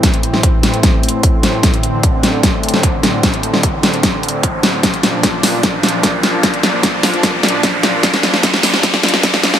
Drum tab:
HH |x-x-x---x---x-x-x---xx--x---x---|x-x-x---x---x---x---xx--x---x---|x-x-x---x---x-x-x---xx--x---x---|x-x-x---x---o---x---xx--x---x---|
SD |o-----o-----o---o-----------o---|o-----------o---o-----o-----o---|o-----o-----o---o-----------o---|o---o---o---o---o---o---o---o---|
BD |o-------o-------o-------o-------|o-------o-------o-------o-------|o-------o-------o-------o-------|o-------o-------o-------o-------|

HH |x-x-x---x---o-x-x---xx--x---x---|x-x-x---x---o---x---xx--x---x---|
SD |o---o---o---o---o---o---o---o---|o-o-o-o-o-o-o-o-o-o-o-o-o-o-o-o-|
BD |o-------o-------o-------o-------|o-------o-------o-------o-------|